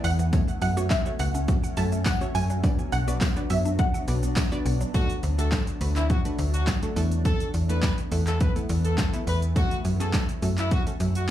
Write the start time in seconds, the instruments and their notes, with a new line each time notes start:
Already playing: ambient pad E3 A3 B3, synth pluck A3 B3 E4 A4 D5
0.04 fm bass E2, synth arpeggio sound E5, synth pluck F#5, open hi-hat, tambourine, shaker
0.19 synth arpeggio sound E3, shaker
0.33 synth arpeggio sound F#3, ambient pad F#3 A3 C#4, synth pluck A3 C#4 F#4 A4 C#5, kick, closed hi-hat, tambourine, shaker
0.48 synth arpeggio sound A3, shaker
0.62 fm bass F#2, synth arpeggio sound C#4, synth pluck F#5, open hi-hat, tambourine, shaker
0.77 synth pluck A3 C#4 F#4 A4 C#5, synth arpeggio sound F#4, shaker
0.90 synth pluck E5, synth arpeggio sound F#5, kick, snare, clap, closed hi-hat, tambourine, shaker
1.06 synth arpeggio sound F#3, synth pluck A3 C#4 F#4 A4 C#5, shaker
1.19 fm bass C#2, synth arpeggio sound A3, synth pluck F#5, open hi-hat, tambourine, shaker
1.35 synth arpeggio sound C#4, shaker
1.48 synth arpeggio sound F#4, kick, closed hi-hat, tambourine, shaker
1.64 synth arpeggio sound F#5, shaker
1.77 fm bass F#2, synth pluck A3 C#4 F#4 A4 E5 A5, open hi-hat, tambourine, shaker
1.92 synth arpeggio sound A3, shaker
2.06 synth arpeggio sound C#4, synth pluck F#5, kick, snare, clap, closed hi-hat, tambourine, shaker
2.21 synth pluck A3 C#4 F#4 A4 C#5, synth arpeggio sound F#4, shaker
2.35 fm bass F#2, synth arpeggio sound F#5, synth pluck G#5, open hi-hat, tambourine, shaker
2.50 synth arpeggio sound F#3, shaker
2.63 synth arpeggio sound F#3, synth pluck B3 D4 F#4 B4 D5, ambient pad B3 D4, kick, closed hi-hat, tambourine, shaker
2.79 synth arpeggio sound B3, shaker
2.92 fm bass B1, synth arpeggio sound D4, synth pluck F#5, open hi-hat, tambourine, shaker
3.08 synth pluck B3 D4 F#4 B4 D5, synth arpeggio sound F#4, shaker
3.21 synth arpeggio sound F#5, kick, snare, clap, closed hi-hat, tambourine, shaker
3.36 synth arpeggio sound F#3, synth pluck B3 D4 F#4 B4 D5, shaker
3.50 fm bass F#2, synth arpeggio sound B3, synth pluck E5, open hi-hat, tambourine, shaker
3.65 synth arpeggio sound D4, shaker
3.79 synth arpeggio sound F#4, synth pluck F#5, kick, closed hi-hat, shaker
3.94 synth arpeggio sound F#5, shaker
4.08 fm bass B1, synth pluck B3 D4 F#4 B4 D5, open hi-hat, tambourine, shaker
4.23 synth arpeggio sound B3, shaker
4.36 synth arpeggio sound D4, kick, snare, clap, closed hi-hat, tambourine, shaker
4.52 synth pluck B3 D4 F#4 B4 D5, synth arpeggio sound F#4, shaker
4.65 fm bass B1, synth arpeggio sound F#5, open hi-hat, tambourine, shaker
4.81 synth arpeggio sound F#3, shaker
4.94 ambient pad F#3 A3 D4, synth pluck A3 D4 F#4 A4, horn section F#4, kick, closed hi-hat, tambourine, shaker
5.10 closed hi-hat, shaker
5.23 fm bass D2, open hi-hat, shaker
5.38 synth pluck A3 D4 F#4 A4, horn section A4, closed hi-hat, shaker
5.52 horn section A4, kick, snare, clap, closed hi-hat, tambourine, shaker
5.67 closed hi-hat, shaker
5.81 fm bass D2, synth pluck A3 D4 F#4 B4, open hi-hat, tambourine, shaker
5.96 horn section E4, clap, closed hi-hat, shaker
6.10 horn section F#4, kick, closed hi-hat, shaker
6.25 synth pluck A3 D4 F#4 B4, closed hi-hat, shaker
6.39 fm bass D2, open hi-hat, tambourine, shaker
6.54 horn section F#4, closed hi-hat, shaker
6.67 kick, snare, clap, closed hi-hat, tambourine, shaker
6.83 synth pluck A3 D4 F#4 A4, closed hi-hat, shaker
6.96 fm bass E2, ambient pad E3 A3 B3, synth pluck A3 B3 E4 A4, open hi-hat, tambourine, shaker
7.11 closed hi-hat, shaker
7.25 horn section A4, kick, closed hi-hat, tambourine, shaker
7.40 closed hi-hat, shaker
7.54 fm bass E2, open hi-hat, tambourine, shaker
7.69 synth pluck A3 B3 E4 A4, horn section B4, closed hi-hat, shaker
7.83 horn section B4, kick, snare, clap, closed hi-hat, tambourine, shaker
7.98 closed hi-hat, shaker
8.12 fm bass E2, synth pluck A3 B3 E4 A4, open hi-hat, tambourine, shaker
8.27 horn section A4, clap, closed hi-hat, shaker
8.40 horn section B4, kick, closed hi-hat, tambourine, shaker
8.56 synth pluck A3 B3 E4 A4, closed hi-hat, shaker
8.69 fm bass E2, open hi-hat, tambourine, shaker
8.85 horn section A4, closed hi-hat, shaker
8.98 horn section A4, kick, snare, clap, closed hi-hat, tambourine, shaker
9.13 synth pluck A3 B3 E4 A4, closed hi-hat, shaker
9.27 fm bass E2, horn section B4, open hi-hat, tambourine, shaker
9.42 closed hi-hat, shaker
9.56 ambient pad F#3 C#4, synth pluck A3 C#4 F#4 A4, horn section F#4, kick, closed hi-hat, tambourine, shaker
9.71 closed hi-hat, shaker
9.85 fm bass F#2, open hi-hat, tambourine, shaker
10.00 synth pluck A3 C#4 F#4 G#4, horn section A4, closed hi-hat, shaker
10.14 horn section A4, kick, snare, clap, closed hi-hat, tambourine, shaker
10.29 closed hi-hat, shaker
10.42 fm bass F#2, synth pluck A3 C#4 F#4 A4, open hi-hat, tambourine, shaker
10.58 horn section E4, clap, closed hi-hat, shaker
10.71 horn section F#4, kick, closed hi-hat, tambourine, shaker
10.86 synth pluck A3 C#4 F#4 A4, closed hi-hat, shaker
11.00 fm bass F#2, open hi-hat, tambourine, shaker
11.15 horn section F#4, closed hi-hat, shaker